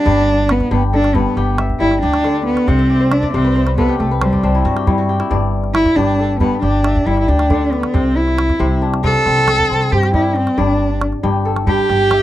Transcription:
0.00 0.10 C3 medium
0.00 0.10 G3 medium
0.00 1.20 C4 medium
0.00 0.52 D4 loud
0.00 0.71 G4 medium
0.00 0.28 A4 medium
0.05 0.59 G1 loud
0.05 0.70 G2 medium
0.05 1.17 D5 medium
0.05 calabash thump medium
0.49 0.72 B3 medium
0.49 calabash click medium
0.60 calabash thump soft
0.60 calabash click soft
0.71 1.24 G1 medium
0.71 1.14 G2 medium
0.71 0.82 B3 medium
0.71 1.36 G4 medium
0.93 1.17 D4 loud
0.93 2.25 A4 medium
1.04 calabash click soft
1.15 2.73 G2 medium
1.15 1.59 B3 medium
1.15 calabash thump medium
1.37 1.72 G1 medium
1.37 2.02 G4 medium
1.37 calabash click soft
1.58 2.62 E5 medium
1.58 calabash click medium
1.70 calabash thump soft
1.80 1.98 G1 medium
1.80 2.29 G3 medium
1.80 2.00 E4 loud
1.91 calabash click soft
2.02 2.56 D2 medium
2.02 2.43 D4 loud
2.02 2.74 G4 medium
2.14 calabash click medium
2.24 2.73 D3 medium
2.24 2.89 D5 medium
2.24 calabash click soft
2.46 2.69 B3 medium
2.57 calabash click soft
2.68 3.22 C2 medium
2.68 3.33 C3 medium
2.68 3.14 C4 loud
2.68 3.64 F#5 medium
2.68 calabash thump medium
2.68 calabash click soft
2.79 3.11 E5 medium
2.90 3.22 D5 medium
3.01 3.34 C5 medium
3.11 3.33 D4 medium
3.11 4.15 E5 medium
3.11 calabash click medium
3.23 4.32 D5 medium
3.23 calabash thump medium
3.34 3.87 C2 loud
3.34 3.77 C3 medium
3.34 3.74 C4 medium
3.34 3.55 C5 medium
3.44 3.67 B4 medium
3.56 4.17 C5 medium
3.56 calabash click soft
3.67 4.11 B4 medium
3.67 calabash click soft
3.78 5.36 C3 medium
3.78 3.98 B3 medium
3.78 4.00 A4 medium
3.78 calabash thump medium
3.78 calabash click soft
3.89 4.71 G4 medium
3.89 calabash click soft
3.99 4.35 C2 medium
3.99 4.09 A3 medium
3.99 5.32 A4 medium
3.99 calabash click soft
4.11 4.50 B4 medium
4.22 4.83 G3 medium
4.22 5.41 C5 medium
4.22 calabash click medium
4.33 5.30 D5 medium
4.33 calabash thump medium
4.43 4.61 C2 medium
4.43 6.24 C4 medium
4.43 6.12 D4 medium
4.43 calabash click soft
4.55 4.87 E4 medium
4.65 5.18 G2 loud
4.65 4.93 F#4 medium
4.65 calabash click soft
4.76 5.04 G4 medium
4.76 calabash click medium
4.87 5.36 G3 medium
4.87 5.19 E4 medium
4.87 calabash thump medium
4.98 5.37 F#4 medium
5.09 5.96 G4 medium
5.20 6.76 E4 medium
5.20 calabash click medium
5.31 5.84 G1 medium
5.31 5.96 G2 medium
5.31 6.41 D5 medium
5.31 calabash thump medium
5.64 calabash click soft
5.74 5.98 E4 loud
5.74 calabash click medium
5.86 calabash thump medium
5.86 calabash click soft
5.96 6.50 G1 loud
5.96 6.40 G2 medium
5.96 6.39 D4 loud
5.96 6.62 G4 medium
6.19 7.51 A4 medium
6.40 7.99 G2 medium
6.40 6.61 B3 medium
6.40 calabash thump medium
6.62 6.98 G1 medium
6.62 7.07 D4 medium
6.62 7.28 G4 medium
6.62 calabash click soft
6.84 7.88 E5 medium
6.84 calabash click medium
6.96 calabash thump medium
7.06 7.24 G1 medium
7.06 7.55 G3 medium
7.06 7.20 E4 loud
7.17 7.30 E4 medium
7.17 calabash click soft
7.28 7.82 D2 loud
7.28 7.73 D4 medium
7.28 8.70 G4 medium
7.39 calabash click medium
7.50 7.99 D3 medium
7.50 8.61 D5 medium
7.50 calabash thump medium
7.50 calabash click soft
7.72 7.96 B3 medium
7.72 calabash click soft
7.83 calabash click medium
7.94 8.47 C2 medium
7.94 8.58 C3 medium
7.94 8.18 C4 medium
7.94 calabash thump medium
8.16 8.82 E4 medium
8.28 calabash click soft
8.38 calabash click medium
8.49 calabash thump medium
8.49 calabash click soft
8.59 9.13 C2 loud
8.59 9.02 C3 medium
8.59 9.25 C4 medium
8.82 10.50 D4 medium
8.94 calabash click soft
9.04 10.63 C3 medium
9.04 9.94 A4 loud
9.04 calabash thump medium
9.26 9.62 C2 medium
9.26 9.69 C4 medium
9.26 calabash click soft
9.48 10.79 A4 medium
9.48 calabash click medium
9.59 calabash thump soft
9.70 9.88 C2 medium
9.70 9.92 C4 medium
9.81 calabash click soft
9.92 10.45 G2 loud
9.92 11.72 C4 medium
9.92 10.14 G4 loud
10.03 calabash click soft
10.14 10.63 G3 medium
10.14 10.38 E4 medium
10.14 11.23 G4 medium
10.14 calabash thump medium
10.14 calabash click soft
10.36 10.60 C4 medium
10.36 calabash click soft
10.47 calabash click soft
10.58 11.11 G1 medium
10.58 11.22 G2 medium
10.58 11.02 D4 medium
10.58 11.68 D5 medium
10.58 calabash thump medium
11.01 calabash click medium
11.12 calabash click soft
11.23 11.77 G1 medium
11.23 11.66 G2 medium
11.23 11.89 G4 medium
11.45 12.22 A4 medium
11.56 calabash click soft
11.67 12.22 G2 medium
11.67 12.22 G4 loud
11.67 calabash thump medium
11.89 12.22 G1 loud
11.89 12.22 G4 medium
11.89 calabash click soft
12.11 12.22 E5 medium
12.11 calabash click medium

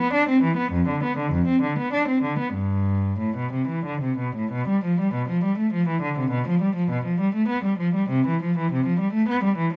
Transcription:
0.00 0.14 B3 medium
0.13 0.28 D4 medium
0.29 0.43 C4 medium
0.43 0.58 E3 medium
0.57 0.72 B3 medium
0.72 0.87 F2 medium
0.88 1.02 D3 soft
1.03 1.18 B3 medium
1.18 1.32 D3 medium
1.32 1.47 F2 medium
1.47 1.62 C4 medium
1.62 1.77 D3 soft
1.78 1.93 B3 medium
1.93 2.08 D4 medium
2.08 2.23 C4 soft
2.23 2.39 D3 soft
2.39 2.55 B3 soft
2.54 3.19 G2 medium
3.19 3.36 A2 soft
3.37 3.53 B2 soft
3.53 3.69 C3 soft
3.68 3.85 E3 soft
3.86 4.02 D3 soft
4.02 4.18 C3 soft
4.18 4.35 B2 soft
4.36 4.52 A2 soft
4.52 4.68 B2 medium
4.68 4.83 G3 soft
4.84 4.99 F3 soft
5.00 5.14 G3 medium
5.14 5.29 B2 soft
5.29 5.43 F3 soft
5.44 5.58 G3 soft
5.58 5.72 A3 soft
5.73 5.87 F3 medium
5.88 6.02 E3 soft
6.02 6.16 D3 soft
6.18 6.31 C3 soft
6.31 6.45 B2 medium
6.48 6.61 F3 soft
6.61 6.75 G3 soft
6.76 6.90 F3 medium
6.91 7.05 B2 soft
7.05 7.19 F3 soft
7.20 7.34 G3 soft
7.35 7.49 A3 medium
7.48 7.63 B3 medium
7.64 7.79 G3 soft
7.79 7.94 F3 medium
7.95 8.10 G3 soft
8.10 8.26 C3 medium
8.27 8.41 E3 soft
8.42 8.57 F3 medium
8.58 8.71 E3 medium
8.72 8.86 C3 medium
8.86 9.00 F3 soft
9.00 9.14 G3 soft
9.13 9.28 A3 medium
9.29 9.43 B3 medium
9.44 9.58 G3 medium
9.58 9.72 E3 medium

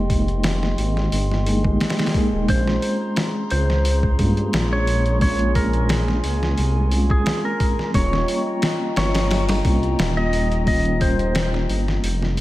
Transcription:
0.00 0.75 F1 loud
0.00 1.45 G#3 medium
0.00 2.45 G#3 medium
0.00 1.47 A#3 medium
0.00 1.48 D#4 medium
0.00 1.68 G4 medium
0.00 2.45 D#5 medium
0.00 2.45 G5 medium
0.00 7.90 C6 medium
0.10 kick loud
0.10 open hi-hat medium
0.28 closed hi-hat soft
0.44 snare loud
0.44 open hi-hat medium
0.63 snare soft
0.78 1.08 G#1 medium
0.78 open hi-hat medium
0.97 snare soft
1.12 1.77 G1 loud
1.12 open hi-hat medium
1.31 snare soft
1.45 1.61 G#3 medium
1.45 1.62 A#3 medium
1.45 1.62 D#4 medium
1.45 1.63 G#4 loud
1.45 open hi-hat medium
1.64 2.11 G#3 medium
1.64 2.11 A#3 medium
1.64 2.12 D#4 medium
1.64 2.12 G4 medium
1.64 kick medium
1.80 snare medium
1.80 open hi-hat medium
1.90 snare medium
1.90 open hi-hat medium
1.99 snare medium
1.99 open hi-hat medium
2.06 snare medium
2.06 open hi-hat medium
2.14 2.45 G#3 medium
2.14 2.45 A#3 medium
2.14 2.46 D#4 medium
2.14 2.46 G#4 loud
2.14 kick medium
2.14 open hi-hat medium
2.33 2.47 D#1 medium
2.47 2.79 A#1 loud
2.47 4.14 G#3 medium
2.47 4.15 C4 medium
2.47 7.91 G#4 medium
2.47 2.96 C5 loud
2.47 5.19 A#5 medium
2.47 kick loud
2.47 open hi-hat medium
2.51 4.17 C#4 medium
2.51 4.18 F4 medium
2.67 snare medium
2.82 open hi-hat medium
3.16 snare loud
3.16 open hi-hat medium
3.50 4.16 C#2 loud
3.50 3.98 C5 loud
3.50 open hi-hat medium
3.70 snare soft
3.85 open hi-hat loud
4.03 kick medium
4.18 4.49 G2 loud
4.18 5.17 G#3 medium
4.18 5.18 A#3 medium
4.18 kick medium
4.18 open hi-hat medium
4.23 5.19 C#4 medium
4.23 5.20 F4 medium
4.37 closed hi-hat soft
4.53 6.21 A#1 loud
4.53 snare loud
4.53 open hi-hat medium
4.73 5.17 C#5 medium
4.87 open hi-hat medium
5.06 closed hi-hat soft
5.20 6.87 G#3 medium
5.20 6.88 A#3 medium
5.20 5.53 C#5 medium
5.20 7.92 G#5 medium
5.20 kick loud
5.20 open hi-hat medium
5.24 6.89 C#4 medium
5.24 6.91 F4 medium
5.39 closed hi-hat soft
5.55 6.02 A#4 medium
5.55 kick loud
5.55 open hi-hat medium
5.73 closed hi-hat soft
5.89 snare loud
5.89 open hi-hat medium
6.08 snare soft
6.24 6.54 C#2 loud
6.24 open hi-hat medium
6.43 snare soft
6.58 7.23 C2 loud
6.58 open hi-hat medium
6.90 7.89 G#3 medium
6.90 7.90 C4 medium
6.90 open hi-hat medium
6.94 7.91 C#4 medium
6.94 7.93 F4 medium
7.10 7.41 G#4 medium
7.10 kick loud
7.26 snare loud
7.26 open hi-hat medium
7.45 7.90 A#4 medium
7.60 kick loud
7.60 open hi-hat medium
7.79 snare soft
7.92 8.25 D#1 loud
7.92 9.60 G3 medium
7.92 9.61 A#3 medium
7.92 12.41 F4 medium
7.92 8.41 C#5 loud
7.92 12.41 D#5 medium
7.92 12.41 G5 medium
7.92 12.41 A#5 medium
7.92 kick loud
7.92 open hi-hat medium
7.96 9.62 C#4 medium
7.96 9.63 F4 medium
8.13 snare medium
8.28 open hi-hat medium
8.62 snare loud
8.62 open hi-hat medium
8.96 9.62 G1 loud
8.96 9.44 C#5 loud
8.96 snare loud
8.96 open hi-hat medium
9.15 snare loud
9.15 open hi-hat medium
9.31 snare loud
9.31 open hi-hat medium
9.49 snare loud
9.49 open hi-hat medium
9.63 9.95 C2 loud
9.63 10.62 G3 medium
9.63 10.63 A#3 medium
9.63 kick loud
9.63 open hi-hat medium
9.67 10.64 C#4 medium
9.67 10.66 F4 medium
9.83 closed hi-hat soft
9.99 11.66 D#1 loud
9.99 snare loud
9.99 open hi-hat medium
10.17 10.62 D#5 loud
10.33 open hi-hat medium
10.52 closed hi-hat soft
10.65 12.33 G3 medium
10.65 12.34 A#3 medium
10.65 10.98 D#5 loud
10.65 kick loud
10.65 open hi-hat medium
10.70 12.35 C#4 medium
10.70 12.36 F4 medium
10.85 closed hi-hat soft
11.01 11.48 C5 medium
11.01 kick loud
11.01 open hi-hat medium
11.19 closed hi-hat soft
11.35 snare loud
11.35 open hi-hat medium
11.54 snare soft
11.69 11.99 G1 loud
11.69 open hi-hat medium
11.88 snare soft
12.03 12.41 F1 loud
12.03 open hi-hat loud
12.22 snare soft
12.35 12.41 G3 medium
12.35 12.41 A#3 medium
12.35 open hi-hat medium

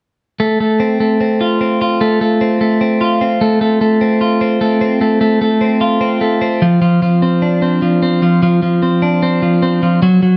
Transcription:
0.40 0.60 A3 medium
0.60 1.00 A3 medium
0.80 1.20 C4 soft
1.00 2.01 A3 soft
1.21 1.60 C4 medium
1.41 1.81 F4 medium
1.61 2.41 C4 soft
1.81 3.01 F4 medium
2.01 2.21 A3 medium
2.21 2.61 A3 medium
2.41 2.81 C4 soft
2.61 3.41 A3 soft
2.81 3.21 C4 medium
3.01 4.21 F4 medium
3.21 4.01 C4 medium
3.41 3.61 A3 medium
3.61 3.80 A3 medium
3.81 4.60 A3 medium
4.01 4.41 C4 soft
4.21 5.81 F4 medium
4.41 4.81 C4 medium
4.61 5.00 A3 medium
4.81 5.61 C4 medium
5.01 5.20 A3 medium
5.21 5.40 A3 medium
5.41 6.20 A3 medium
5.61 6.00 C4 medium
5.81 9.31 F4 medium
6.01 6.41 C4 medium
6.21 6.66 A3 soft
6.41 7.22 C4 medium
6.62 6.80 F3 medium
6.82 7.01 F3 medium
7.02 7.81 F3 medium
7.22 7.61 C4 soft
7.42 9.01 D4 medium
7.62 8.01 C4 soft
7.82 8.21 F3 soft
8.03 8.81 C4 medium
8.22 8.41 F3 medium
8.43 8.61 F3 medium
8.62 9.41 F3 medium
8.83 9.21 C4 medium
9.02 10.06 D4 medium
9.23 9.61 C4 medium
9.42 9.82 F3 soft
9.63 10.06 C4 soft
9.83 10.02 F3 medium
10.02 10.21 F#3 medium
10.23 10.37 F#3 medium

